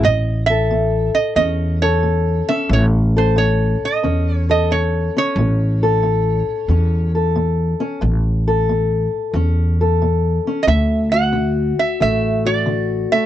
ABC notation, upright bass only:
X:1
M:4/4
L:1/8
Q:"Swing" 1/4=90
K:A
V:1 name="Upright bass" clef=bass
A,,,4 E,,4 | A,,,4 E,,4 | A,,,4 E,,4 | A,,,4 E,,4 |
D,,4 A,,,4 |]